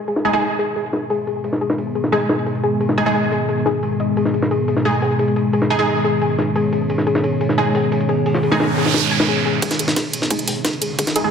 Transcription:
Already playing: ambient pad G#3 B3 D#4 B4
0.08 synth pluck G#4, ride
0.16 snare
0.25 synth stab G#3 D#4 G#4, synth pluck G#4, ride
0.33 synth stab G#3 D#4 G#4
0.42 synth pluck G#4, ride
0.59 synth pluck G#4, ride
0.76 synth pluck G#4, ride
0.93 synth pluck G#4, snare, ride
1.10 synth pluck G#4, ride
1.27 synth pluck G#4, ride
1.44 synth pluck G#4, ride
1.53 snare
1.61 synth pluck G#4, ride
1.70 snare
1.78 synth pluck G#4, ride
1.95 synth pluck G#4, ride
2.04 snare
2.12 synth stab G#3 D#4 G#4, synth pluck G#4, ride
2.29 synth pluck G#4, snare, ride
2.46 synth pluck G#4, ride
2.55 ride
2.63 synth pluck G#4, ride
2.80 synth pluck G#4, ride
2.89 snare
2.98 synth stab G#3 D#4 G#4, synth pluck G#4, ride
3.06 synth stab G#3 D#4 G#4
3.15 synth pluck G#4, ride
3.32 synth pluck G#4, ride
3.49 synth pluck G#4, ride
3.66 synth pluck G#4, snare, ride
3.83 synth pluck G#4, ride
4.00 synth pluck D#5, ride
4.17 synth pluck G#4, ambient pad C#5, ride
4.25 snare
4.34 synth pluck G#4, ride
4.42 snare
4.51 synth pluck G#4, ride
4.68 synth pluck G#4, ride
4.77 snare
4.85 synth stab G#3 D#4 G#4, synth pluck G#4, ride
5.02 synth pluck G#4, open hi-hat
5.19 synth pluck G#4, ride
5.28 ride
5.36 synth pluck G#4, ride
5.53 synth pluck G#4, ride
5.62 snare
5.70 synth stab G#3 D#4 G#4, synth pluck G#4, ride
5.79 synth stab G#3 D#4 G#4
5.87 synth pluck G#4, ride
6.04 synth pluck G#4, ride
6.21 synth pluck G#4, ride
6.38 synth pluck G#4, snare, ride
6.56 synth pluck G#4, ride
6.73 synth pluck G#4, ride
6.90 synth pluck G#4, ride
6.98 snare
7.07 synth pluck G#4, ride
7.15 snare
7.24 synth pluck G#4, ride
7.41 synth pluck G#4, ride
7.49 snare
7.58 synth stab G#3 D#4 G#4, synth pluck G#4, ride
7.75 synth pluck G#4, open hi-hat
7.92 synth pluck G#4, ride
8.00 ride
8.09 synth pluck G#4, ride
8.26 synth pluck G#4, ride, noise sweep
8.35 snare
8.43 synth pluck G#4, ride
8.52 synth stab G#3 D#4 G#4, snare
8.60 synth pluck G#4, snare, ride
8.77 synth pluck G#4, ride
8.86 snare
8.94 synth pluck G#4, snare, ride
9.11 synth pluck G#5, ride
9.20 snare, ride
9.28 synth pluck G#4
9.37 ride
9.45 synth pluck G#4, ride
9.62 ambient pad G#3 B3 D#4 B4, synth pluck G#4, kick, closed hi-hat, ride, riser
9.71 snare, closed hi-hat
9.79 synth pluck G#4, closed hi-hat, ride
9.88 snare
9.96 synth pluck G#4, kick, snare, closed hi-hat, ride
10.13 synth pluck G#4, closed hi-hat, ride
10.22 snare
10.30 synth stab G#3 D#4 G#4, synth pluck G#4, kick, closed hi-hat, ride
10.39 closed hi-hat
10.48 synth pluck G#4, closed hi-hat, open hi-hat
10.65 synth pluck G#4, kick, snare, closed hi-hat, ride
10.73 ride
10.82 synth pluck G#4, closed hi-hat, ride
10.99 synth pluck G#4, kick, closed hi-hat, ride
11.07 snare, closed hi-hat
11.16 synth stab G#3 D#4 G#4, synth pluck G#4, closed hi-hat, ride
11.24 synth stab G#3 D#4 G#4

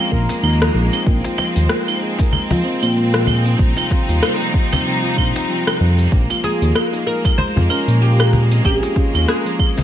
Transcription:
Already playing: string section G#3 A#3
0.00 handpan F4
0.12 analog synth bass A#1, handpan A#4, kick
0.29 handpan A#3, cajon slap, open hi-hat, shaker
0.43 analog synth bass D#2, handpan D#4, claves, shaker
0.62 handpan F3, cross-stick, shaker
0.74 analog synth bass A#1, handpan G#4
0.93 handpan C4, open hi-hat, claves, shaker
1.06 analog synth bass A#1, handpan A#3, string section C4, kick, shaker
1.24 handpan F4, cajon slap, open hi-hat, shaker
1.38 handpan F3, cajon slap, claves
1.56 analog synth bass D#2, handpan F3, open hi-hat, shaker
1.69 handpan A#3, cross-stick, shaker
1.88 handpan D#4, open hi-hat, claves, shaker
2.02 handpan G#4
2.19 handpan A#4, kick, cajon slap, open hi-hat, shaker
2.33 handpan G#3, cajon bass, claves, shaker
2.51 analog synth bass F2, handpan F4, cajon bass, shaker
2.65 handpan C4
2.82 analog synth bass A#2, handpan F3, open hi-hat, claves, shaker
2.96 handpan A#3, shaker
3.14 handpan F3, cross-stick, shaker
3.27 handpan G#4, cajon bass, claves
3.45 handpan C4, open hi-hat, shaker
3.59 analog synth bass A#1, string section C3 G3 D#4, handpan C4, kick, shaker
3.76 handpan F4, cajon slap, open hi-hat, claves, shaker
3.91 handpan C4, kick, cajon slap
4.09 analog synth bass D#2, handpan F4, open hi-hat, shaker
4.22 handpan A#3, cross-stick, claves, shaker
4.40 handpan F3, open hi-hat, shaker
4.54 handpan G4, kick
4.72 handpan C4, cajon bass, cajon slap, open hi-hat, claves, shaker
4.85 handpan F3, shaker
5.04 handpan F4, cajon slap, open hi-hat, shaker
5.17 analog synth bass A#1, handpan C4, kick, claves
5.35 handpan C4, cajon slap, open hi-hat, shaker
5.49 handpan F3, shaker
5.67 handpan F3, cross-stick, claves, shaker
5.80 analog synth bass F2, handpan F3
5.98 handpan G4, open hi-hat, shaker
6.12 analog synth bass A#1, string section G#3 A#3, handpan A#3, kick, shaker
6.30 handpan F4, cajon slap, open hi-hat, claves, shaker
6.43 handpan F3, oud G#4, cajon slap
6.62 analog synth bass D#2, handpan F3, open hi-hat, shaker
6.75 handpan A#3, cross-stick, claves, shaker
6.93 handpan D#4, open hi-hat, shaker
7.06 handpan G#4, oud A#4
7.25 handpan A#4, kick, cajon slap, open hi-hat, claves, shaker
7.38 handpan G#3, oud C5, cajon bass, shaker
7.56 analog synth bass F2, handpan F4, cajon bass, shaker
7.69 handpan C#4, oud A#4, claves
7.87 analog synth bass A#2, handpan F3, open hi-hat, shaker
8.01 handpan A#3, oud G4, shaker
8.19 handpan A#4, cross-stick, claves, shaker
8.32 handpan G#4, cajon bass
8.50 handpan C4, open hi-hat, shaker
8.63 analog synth bass A#1, handpan C#4, oud G4, kick, claves, shaker
8.76 oud G#4
8.81 handpan F4, cajon slap, open hi-hat, shaker
8.95 handpan C#4, kick, cajon slap
9.14 analog synth bass D#2, handpan F4, open hi-hat, claves, shaker
9.27 handpan A#3, oud G#4, cross-stick, shaker
9.45 handpan F3, open hi-hat, shaker
9.58 handpan G#4, kick, claves
9.76 handpan C4, cajon bass, cajon slap, open hi-hat, shaker

